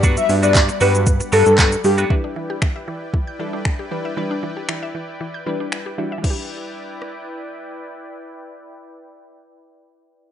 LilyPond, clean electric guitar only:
\new Staff \with { instrumentName = "Clean electric guitar" } { \time 4/4 \key e \minor \tempo 4 = 116 <fis b d' fis'>8 r16 <fis b d' fis'>16 r8 <fis b d' fis'>8 r8 <fis b d' fis'>8 <fis b d' fis'>8 r16 <fis b d' fis'>16 | r1 | r1 | r1 |
r1 | }